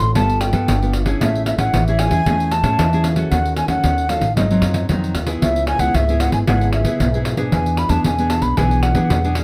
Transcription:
Already playing: A2 C4 F4 A4
0.00 A1 C6, pandeiro
0.15 G1 G3 B3 F4 A4 A5, pandeiro
0.29 pandeiro
0.40 G5, pandeiro
0.53 G2 B3 F4 A4, pandeiro
0.68 G1 D3, pandeiro
0.82 B3 F4 A4, pandeiro
0.93 pandeiro
1.06 C#4 E4 G#4, pandeiro
1.21 A1 A3 E5, pandeiro
1.35 pandeiro
1.46 E5, pandeiro
1.58 A1 C#4 E4 G#4 F#5, pandeiro
1.74 A1 E3, pandeiro
1.88 C#4 E4 G#4 E5, pandeiro
1.99 G#5, pandeiro
2.11 E2 C#4 E4 G#4, pandeiro
2.26 E2 A3 C#4 E4 G#4, pandeiro
2.40 pandeiro
2.51 A5, pandeiro
2.63 A2 C#4 E4 G#4, pandeiro
2.79 E2 E3, pandeiro
2.93 C#4 E4 G#4, pandeiro
3.04 pandeiro
3.16 C#4 F#4 A4, pandeiro
3.31 D#2 D#3 F#5, pandeiro
3.46 pandeiro
3.57 G#5, pandeiro
3.68 D#2 C#4 F#4 A4 F#5, pandeiro
3.84 D#2 D#3, pandeiro
3.98 pandeiro
4.09 C#4 F#4 A4 F5, pandeiro
4.21 A1, pandeiro
4.36 G#1 G#2 F#3 C4 D#4 D#5, pandeiro
4.51 F#3 C4 D#4, pandeiro
4.62 F#2, pandeiro
4.74 pandeiro
4.89 F2 D#3 F#3 C4 D#4, pandeiro
5.04 pandeiro
5.15 D#2, pandeiro
5.27 B3 E4 G#4, pandeiro
5.42 C#2 C#3 E5, pandeiro
5.56 pandeiro
5.67 G#5, pandeiro
5.79 C#2 B3 E4 G#4 F#5, pandeiro
5.94 C#2 G#2 E5, pandeiro
6.09 B3 E4 G#4, pandeiro
6.20 F#5, pandeiro
6.32 G#1 G#5, pandeiro
6.47 G#1 C#3 B3 E4 G#4 F#5, pandeiro
6.61 pandeiro
6.73 E5, pandeiro
6.84 C#3 B3 E4 G#4, pandeiro
7.00 B1 G#2, pandeiro
7.14 B3 E4 G#4, pandeiro
7.25 pandeiro
7.37 B3 D4 G#4, pandeiro
7.52 E2 E3 G#5, pandeiro
7.66 pandeiro
7.77 B5, pandeiro
7.89 E2 B3 D4 G#4 A5, pandeiro
8.04 E2 B2 G#5, pandeiro
8.18 B3 D4 G#4, pandeiro
8.30 A5, pandeiro
8.42 B1 B5, pandeiro
8.57 B1 E3 B3 D4 G#4 G#5, pandeiro
8.71 pandeiro
8.83 F#5, pandeiro
8.95 E3 B3 D4 G#4, pandeiro
9.10 E2 B2, pandeiro
9.24 B3 D4 G#4, pandeiro
9.35 pandeiro

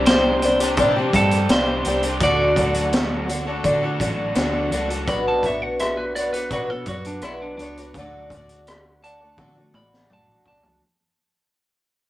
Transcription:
Already playing: C2 G3 C4 D4 G4
0.06 C3 G3 C4 D4 G4 C5, snare, closed hi-hat
0.42 G3 C4 D4 G4, muted overdriven electric guitar stroke, closed hi-hat
0.60 C4 D4 G4, closed hi-hat
0.77 C3 G3 C4 D4 G4, kick, closed hi-hat
0.96 C4 D4 G4
1.13 G2 G3 C4 D4 G4 A4, kick, closed hi-hat
1.31 closed hi-hat
1.49 C2 C3 G3 C4 D4 G4 C5, snare, closed hi-hat
1.66 C4 D4 G4
1.85 C2 G3 C4 D4 G4, closed hi-hat
2.03 C4 D4 G4, closed hi-hat
2.20 D2 D3 F#3 A3 D4 F#4 A4 D5, kick, closed hi-hat
2.56 D3 F#3 A3 D4 F#4 A4, kick, closed hi-hat
2.74 A3 D4 F#4, closed hi-hat
2.93 D3 F#3 A3 D4 F#4, snare, closed hi-hat
3.28 D3 D4 F#4 A4, muted overdriven electric guitar stroke, closed hi-hat
3.46 A3 D4 F#4 A4
3.64 D3 D4 F#4 A4, kick, closed hi-hat
3.83 A3 D4 F#4 A4
4.00 A1 D3 F#3 A3 D4 F#4 A4, kick, closed hi-hat
4.35 D2 D3 F#3 A3 D4 F#4 A4, snare, closed hi-hat
4.53 A3 D4 F#4
4.70 C#2 D3 F#3 A3 D4 F#4, closed hi-hat
4.75 A4
4.88 A3 D4 F#4 A4, closed hi-hat
5.07 B1 B2 F#3 B3 D4 F#4 C#5 B5, kick, closed hi-hat
5.28 A5
5.43 B3 D4 F#4 C#5 E5, kick, closed hi-hat
5.62 F#5
5.79 E5, cross-stick, closed hi-hat
5.97 B4
6.15 B3 D4 F#4 C#5 D5, closed hi-hat
6.33 B3 D4 F#4 B4 C#5, closed hi-hat
6.51 B2 F#3 B3 D4 F#4 C#5, kick, closed hi-hat
6.70 B3 D4 F#4 A4 C#5
6.86 F#2 B3 D4 F#4, kick, closed hi-hat
6.90 C#5
7.05 D4, closed hi-hat
7.21 B1 B2 F#3 B3 D4 E4 F#4 C#5, cross-stick, closed hi-hat
7.42 D4
7.57 C#2 B3 D4 F#4, closed hi-hat
7.62 C#5
7.77 B3 D4 F#4 C#5, closed hi-hat
7.94 D2 D3 F#3, kick, closed hi-hat
7.98 A3 D4 F#4 D5
8.30 A3 D4 F#4, kick, closed hi-hat
8.34 D5
8.49 closed hi-hat
8.67 cross-stick, closed hi-hat
9.03 A3 D4 F#4 D5 A5, closed hi-hat
9.21 A3 D4 F#4 D5
9.37 D3 F#3 A3 D4 F#4 D5, kick, high tom
9.56 A3 D4 F#4 D5
9.73 A1 A3 D4 F#4 D5 B5, mid tom
9.93 snare
10.09 F#1 D3 F#3 A3 D4 F#4 D5 A5, mid tom
10.28 A1
10.45 B1 A3 D4 F#4 D5 A5, kick
10.63 C#2 A3 D4 F#4 D5, floor tom

